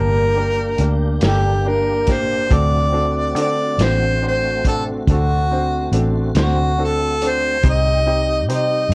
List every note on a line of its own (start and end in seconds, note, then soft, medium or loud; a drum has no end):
0.00 0.75 G1 medium
0.00 0.26 A#3 soft
0.00 2.47 A#3 medium
0.00 0.26 D4 soft
0.00 2.48 D4 medium
0.00 0.26 G4 soft
0.00 2.48 G4 medium
0.00 0.92 A#4 medium
0.00 0.26 A5 medium
0.36 0.69 A#3 soft
0.36 0.69 D4 soft
0.36 0.69 G4 soft
0.36 0.69 A#4 medium
0.78 1.18 D2 medium
0.78 1.11 A#3 soft
0.78 1.12 D4 soft
0.78 1.12 G4 soft
0.78 1.12 A#4 soft
0.78 closed hi-hat medium
1.21 2.46 G1 medium
1.21 1.55 A#3 medium
1.21 1.55 D4 soft
1.21 1.55 G4 soft
1.21 1.55 A4 medium
1.21 snare loud
1.21 closed hi-hat medium
1.27 1.70 G4 medium
1.66 1.97 A#3 soft
1.66 1.98 D4 soft
1.66 1.98 G4 soft
1.66 1.98 A#4 medium
1.66 2.13 A#4 medium
2.07 2.40 A#3 medium
2.07 2.40 D4 soft
2.07 2.40 G4 soft
2.07 2.41 A#4 medium
2.07 kick medium
2.07 snare soft
2.07 closed hi-hat medium
2.12 2.55 C5 medium
2.48 3.35 D2 medium
2.48 7.58 A3 medium
2.48 7.58 C4 medium
2.48 2.83 C4 medium
2.48 2.82 D4 soft
2.48 7.58 F#4 medium
2.48 2.83 F#4 medium
2.48 2.83 A4 medium
2.48 kick loud
2.48 closed hi-hat medium
2.53 3.37 D5 medium
2.92 3.25 C4 medium
2.92 3.25 D4 soft
2.92 3.25 F#4 soft
2.92 3.26 A4 medium
3.35 3.75 D3 medium
3.35 3.69 C4 medium
3.35 3.68 D4 soft
3.35 3.69 F#4 soft
3.35 3.69 A4 medium
3.35 closed hi-hat medium
3.41 3.85 D5 medium
3.78 5.03 A1 medium
3.78 4.12 C4 medium
3.78 4.12 D4 soft
3.78 4.12 F#4 soft
3.78 4.12 C5 medium
3.78 snare medium
3.78 closed hi-hat medium
3.83 4.24 C5 medium
4.22 4.54 C4 soft
4.22 4.54 D4 soft
4.22 4.54 F#4 soft
4.22 4.55 C5 medium
4.28 4.65 C5 medium
4.65 4.97 C4 medium
4.65 4.97 D4 soft
4.65 4.97 F#4 soft
4.65 4.97 A4 medium
4.65 4.84 A4 medium
4.65 kick medium
4.65 closed hi-hat medium
5.07 5.89 D2 medium
5.07 5.40 C4 medium
5.07 5.40 D4 soft
5.07 5.41 F#4 soft
5.07 5.41 A4 medium
5.07 kick medium
5.07 closed hi-hat medium
5.12 6.02 F#4 medium
5.51 5.83 C4 soft
5.51 5.83 D4 soft
5.51 5.83 F#4 soft
5.51 5.83 C5 medium
5.92 6.31 A1 medium
5.92 6.24 C4 soft
5.92 6.25 D4 soft
5.92 6.25 F#4 soft
5.92 6.25 A4 medium
5.92 closed hi-hat medium
6.35 7.59 D2 medium
6.35 6.68 C4 medium
6.35 6.68 D4 soft
6.35 6.68 F#4 soft
6.35 6.68 C5 medium
6.35 snare loud
6.35 closed hi-hat medium
6.41 6.86 F#4 medium
6.78 7.10 C4 soft
6.78 7.10 D4 soft
6.78 7.11 F#4 soft
6.78 7.11 A4 medium
6.84 7.30 A4 medium
7.22 7.53 C4 medium
7.22 7.53 D4 soft
7.22 7.54 F#4 soft
7.22 7.54 A4 soft
7.22 closed hi-hat medium
7.28 7.67 C5 medium
7.61 8.48 C2 loud
7.61 8.94 G3 medium
7.61 7.95 C4 medium
7.61 8.94 D#4 medium
7.61 7.95 D#4 medium
7.61 8.94 G4 medium
7.61 7.96 G4 medium
7.61 7.96 C5 medium
7.61 kick medium
7.61 closed hi-hat medium
7.70 8.48 D#5 loud
8.07 8.38 C4 soft
8.07 8.38 D#4 soft
8.07 8.39 G4 soft
8.07 8.39 D#5 medium
8.48 8.88 C3 medium
8.48 8.81 C4 medium
8.48 8.81 D#4 medium
8.48 8.81 G4 medium
8.48 8.81 C5 medium
8.48 closed hi-hat medium
8.54 8.94 D#5 medium
8.89 8.94 G2 loud